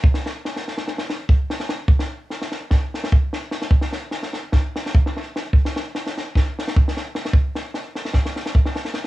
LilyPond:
\new DrumStaff \with { instrumentName = "Drums" } \drummode { \time 9/8 \tempo 4. = 99 bd16 sn16 sn8 sn16 sn16 sn16 sn16 sn16 sn16 sn8 bd8 sn16 sn16 sn8 | bd16 sn8. sn16 sn16 sn8 <bd sn>8 sn16 sn16 bd8 sn8 sn16 sn16 | bd16 sn16 sn8 sn16 sn16 sn8 <bd sn>8 sn16 sn16 bd16 sn16 sn8 sn8 | bd16 sn16 sn8 sn16 sn16 sn8 <bd sn>8 sn16 sn16 bd16 sn16 sn8 sn16 sn16 |
bd8 sn8 sn8 sn16 sn16 <bd sn>16 sn16 sn16 sn16 bd16 sn16 sn16 sn16 sn8 | }